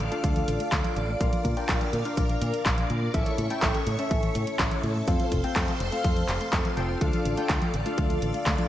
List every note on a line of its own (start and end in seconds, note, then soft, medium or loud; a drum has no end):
0.00 0.10 D3 loud
0.00 1.19 A4 medium
0.00 3.10 D5 medium
0.00 3.10 F5 medium
0.00 3.10 D6 medium
0.12 0.22 A3 medium
0.12 1.18 D4 medium
0.12 1.18 F4 medium
0.12 1.18 A4 medium
0.12 1.18 F5 loud
0.12 closed hi-hat soft
0.24 0.41 D2 medium
0.24 0.34 A3 loud
0.24 kick loud
0.24 closed hi-hat loud
0.36 0.47 F3 loud
0.36 closed hi-hat soft
0.48 0.57 A1 medium
0.48 0.58 D3 loud
0.48 closed hi-hat medium
0.60 0.71 A3 medium
0.60 closed hi-hat soft
0.72 0.81 D2 medium
0.72 0.83 A3 loud
0.72 kick loud
0.72 clap loud
0.72 closed hi-hat medium
0.84 0.96 F3 loud
0.84 closed hi-hat soft
0.96 1.14 A1 medium
0.96 1.07 D3 medium
0.96 closed hi-hat soft
1.08 1.20 A3 medium
1.20 1.29 A#1 medium
1.20 1.31 A#3 loud
1.20 1.54 D4 medium
1.20 1.54 F4 medium
1.20 1.54 A#4 medium
1.20 3.12 A#4 medium
1.20 1.54 F5 loud
1.20 kick loud
1.20 closed hi-hat medium
1.33 1.44 F3 loud
1.33 closed hi-hat soft
1.45 1.54 A#2 medium
1.45 1.55 D3 loud
1.45 kick medium
1.45 closed hi-hat medium
1.57 1.68 A#3 medium
1.57 1.87 D4 loud
1.57 1.87 F4 medium
1.57 1.87 A#4 medium
1.57 1.87 G5 loud
1.57 closed hi-hat soft
1.69 1.78 A#1 loud
1.69 1.79 A#3 loud
1.69 kick loud
1.69 clap loud
1.69 closed hi-hat medium
1.81 1.92 F3 loud
1.81 closed hi-hat soft
1.93 2.02 A#2 medium
1.93 2.04 D3 medium
1.93 closed hi-hat medium
2.05 2.16 A#3 medium
2.05 3.11 D4 loud
2.05 3.11 F4 medium
2.05 3.11 A#4 medium
2.05 3.11 F5 loud
2.05 closed hi-hat soft
2.17 2.35 A#1 medium
2.17 2.28 A#3 loud
2.17 kick loud
2.17 closed hi-hat loud
2.29 2.41 F3 loud
2.29 closed hi-hat soft
2.41 2.50 A#2 loud
2.41 2.52 D3 loud
2.41 closed hi-hat medium
2.54 2.65 A#3 medium
2.54 closed hi-hat soft
2.66 2.83 A#1 medium
2.66 2.76 A#3 loud
2.66 kick loud
2.66 clap loud
2.66 closed hi-hat medium
2.78 2.89 F3 loud
2.78 closed hi-hat soft
2.90 3.07 A#2 medium
2.90 3.00 D3 loud
2.90 closed hi-hat soft
3.02 3.13 A#3 medium
3.14 3.23 A1 medium
3.14 3.25 A3 loud
3.14 3.47 C#4 medium
3.14 3.47 E4 medium
3.14 6.97 A4 medium
3.14 3.47 A4 medium
3.14 5.06 C#5 medium
3.14 5.06 E5 medium
3.14 3.47 E5 loud
3.14 5.06 C#6 medium
3.14 kick loud
3.14 closed hi-hat medium
3.26 3.38 E3 loud
3.26 closed hi-hat soft
3.38 3.47 A2 medium
3.38 3.49 C#3 loud
3.38 closed hi-hat medium
3.50 3.61 A3 medium
3.50 3.80 C#4 medium
3.50 3.80 E4 medium
3.50 3.80 A4 medium
3.50 3.80 G5 loud
3.50 closed hi-hat soft
3.62 3.71 A1 loud
3.62 3.73 A3 loud
3.62 kick loud
3.62 clap loud
3.62 closed hi-hat medium
3.75 3.86 E3 loud
3.75 closed hi-hat soft
3.87 3.95 A2 medium
3.87 3.97 C#3 loud
3.87 closed hi-hat medium
3.99 4.10 A3 medium
3.99 5.05 C#4 loud
3.99 5.05 E4 medium
3.99 5.05 A4 medium
3.99 5.05 E5 loud
3.99 closed hi-hat soft
4.11 4.28 A1 medium
4.11 4.21 A3 loud
4.11 kick loud
4.11 closed hi-hat medium
4.23 4.34 E3 loud
4.23 closed hi-hat soft
4.35 4.44 A2 medium
4.35 4.46 C#3 loud
4.35 closed hi-hat medium
4.47 4.58 A3 medium
4.47 closed hi-hat soft
4.59 4.68 A1 loud
4.59 4.70 A3 loud
4.59 kick loud
4.59 clap loud
4.59 closed hi-hat medium
4.71 4.83 E3 loud
4.71 closed hi-hat soft
4.83 5.01 A2 medium
4.83 4.94 C#3 loud
4.83 closed hi-hat soft
4.95 5.06 A3 medium
5.08 5.16 F2 medium
5.08 5.18 A3 loud
5.08 5.41 C4 medium
5.08 5.41 F4 medium
5.08 5.41 A4 medium
5.08 6.99 C5 medium
5.08 5.41 F5 medium
5.08 8.68 F5 medium
5.08 6.99 C6 medium
5.08 kick loud
5.08 closed hi-hat medium
5.20 5.31 F3 loud
5.20 closed hi-hat soft
5.32 5.41 F1 medium
5.32 5.42 C3 loud
5.32 kick medium
5.32 closed hi-hat medium
5.44 5.55 A3 medium
5.44 5.74 C4 loud
5.44 5.74 F4 medium
5.44 5.74 A4 medium
5.44 5.74 G5 loud
5.44 closed hi-hat soft
5.56 5.65 F2 loud
5.56 5.67 A3 loud
5.56 kick loud
5.56 clap loud
5.56 closed hi-hat medium
5.68 5.80 F3 loud
5.68 closed hi-hat soft
5.80 5.89 F1 loud
5.80 5.91 C3 loud
5.80 closed hi-hat medium
5.92 6.03 A3 medium
5.92 6.75 C4 medium
5.92 6.75 F4 medium
5.92 6.75 A4 medium
5.92 6.75 F5 loud
5.92 closed hi-hat soft
6.04 6.22 F2 medium
6.04 6.15 A3 loud
6.04 kick loud
6.04 closed hi-hat medium
6.16 6.28 F3 loud
6.16 closed hi-hat soft
6.29 6.37 F1 loud
6.29 6.39 C3 loud
6.29 clap medium
6.29 closed hi-hat medium
6.41 6.52 A3 medium
6.41 closed hi-hat soft
6.53 6.62 F2 loud
6.53 6.63 A3 loud
6.53 kick loud
6.53 clap loud
6.53 closed hi-hat medium
6.65 6.76 F3 loud
6.65 closed hi-hat soft
6.77 6.95 F1 loud
6.77 6.88 C3 loud
6.77 6.98 C4 medium
6.77 6.98 F4 medium
6.77 6.98 A4 medium
6.77 6.98 G5 loud
6.77 closed hi-hat soft
6.89 7.00 A3 medium
7.01 7.10 D2 medium
7.01 7.12 A3 loud
7.01 7.35 D4 medium
7.01 7.35 F4 medium
7.01 8.68 A4 medium
7.01 7.35 A4 medium
7.01 8.68 D5 medium
7.01 7.35 F5 loud
7.01 8.68 D6 medium
7.01 kick loud
7.01 closed hi-hat medium
7.13 7.25 F3 loud
7.13 closed hi-hat soft
7.25 7.34 A1 medium
7.25 7.36 D3 loud
7.25 closed hi-hat medium
7.37 7.48 A3 medium
7.37 7.67 D4 loud
7.37 7.67 F4 medium
7.37 7.67 A4 medium
7.37 7.67 G5 loud
7.37 closed hi-hat soft
7.49 7.58 D2 medium
7.49 7.60 A3 loud
7.49 kick loud
7.49 clap loud
7.49 closed hi-hat medium
7.62 7.73 F3 loud
7.62 closed hi-hat soft
7.74 7.83 A1 loud
7.74 7.84 D3 loud
7.74 closed hi-hat medium
7.86 7.97 A3 medium
7.86 8.68 D4 medium
7.86 8.68 F4 medium
7.86 8.68 A4 medium
7.86 8.68 F5 loud
7.86 closed hi-hat soft
7.98 8.15 D2 medium
7.98 8.08 A3 loud
7.98 kick loud
7.98 closed hi-hat medium
8.10 8.22 F3 loud
8.10 closed hi-hat soft
8.22 8.31 A1 medium
8.22 8.33 D3 loud
8.22 closed hi-hat medium
8.34 8.45 A3 medium
8.34 closed hi-hat soft
8.46 8.55 D2 loud
8.46 8.57 A3 loud
8.46 kick loud
8.46 clap loud
8.46 closed hi-hat medium
8.58 8.68 F3 loud
8.58 closed hi-hat soft